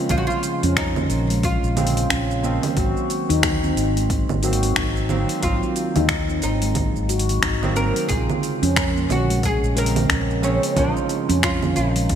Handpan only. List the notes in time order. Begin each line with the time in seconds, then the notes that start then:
0.10 F4
0.64 C#4
0.97 A#3
1.31 G#3
1.77 F4
2.10 C#4
2.44 A#3
2.77 F#4
3.30 D#4
3.63 C4
3.97 G#3
4.43 F#4
4.76 D#4
5.09 C4
5.43 F#3
5.96 D#4
6.30 C4
6.63 G#3
7.09 F#4
7.43 D#4
7.76 C4
8.10 F4
8.63 C#4
8.96 A#3
9.30 G#3
9.77 A#4
10.09 C#4
10.43 A#3
10.76 F4
11.29 C#4
11.63 A#3
11.96 G#3